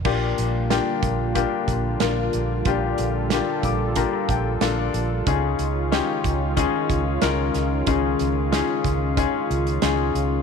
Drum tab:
CC |x---------------|----------------|----------------|----------------|
HH |--x-x-x-x-x-x-x-|x-x-x-x-x-x-x-x-|x-x-x-x-x-x-x-x-|x-x-x-x-x-xxx-x-|
SD |----o-------o---|----o-------o---|----o-------o-o-|----o-------o---|
BD |o-----o-o-o-----|o-----o-o-o-----|o-----o-o-o-----|o-----o-o-------|